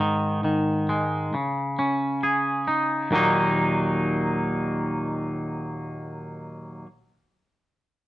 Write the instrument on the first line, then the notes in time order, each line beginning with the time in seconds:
clean electric guitar
Already playing: G#2 D#4
0.00 D#3
0.44 D#3
0.89 G#3
1.34 C#3
1.79 C#4
2.23 G#4
2.68 D#4
3.11 D#2 A#2 D#3 F#3 A#3
3.15 D#4